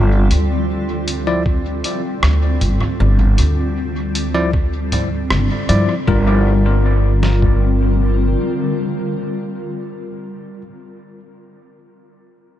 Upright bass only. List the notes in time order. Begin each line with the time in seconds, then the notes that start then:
Already playing: G1
0.31 D2
2.23 D2
2.61 G1
3.00 G1
3.39 D2
5.31 G1
5.69 G2
6.08 G1